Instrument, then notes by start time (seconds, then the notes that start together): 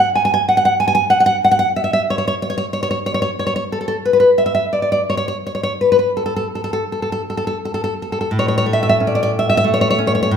nylon-string guitar
0.15 G#5
0.25 G#5
0.34 G#5
0.49 F#5
0.57 F#5
0.65 F#5
0.80 G#5
0.88 G#5
0.95 G#5
1.10 F#5
1.20 F#5
1.26 F#5
1.45 F#5
1.51 F#5
1.59 F#5
1.76 E5
1.84 E5
1.93 E5
2.10 C#5
2.18 C#5
2.28 C#5
2.42 C#5
2.50 C#5
2.58 C#5
2.73 C#5
2.83 C#5
2.91 C#5
3.06 C#5
3.14 C#5
3.22 C#5
3.39 C#5
3.47 C#5
3.56 C#5
3.72 A4
3.81 A4
3.88 A4
4.05 B4
4.13 B4
4.20 B4
4.38 E5
4.46 E5
4.55 E5
4.73 D5
4.82 D5
4.92 D5
5.10 C#5
5.17 C#5
5.28 C#5
5.47 C#5
5.55 C#5
5.63 C#5
5.81 B4
5.92 B4
5.99 B4
6.17 A4
6.26 A4
6.36 A4
6.55 A4
6.64 A4
6.73 A4
6.92 A4
7.02 A4
7.12 A4
7.30 A4
7.37 A4
7.47 A4
7.65 A4
7.74 A4
7.84 A4
8.02 A4
8.12 A4
8.21 A4
8.31 A2
8.39 C#5
8.48 C#5
8.58 C#5
8.66 A3
8.73 E5
8.83 E5
8.89 E5
9.00 C#4
9.07 D5
9.15 D5
9.23 D5
9.39 E5
9.50 E5
9.57 E5
9.64 A3
9.74 C#5
9.81 C#5
9.91 C#5
9.99 C#4
10.07 C#5
10.15 C#5
10.23 C#5
10.31 A2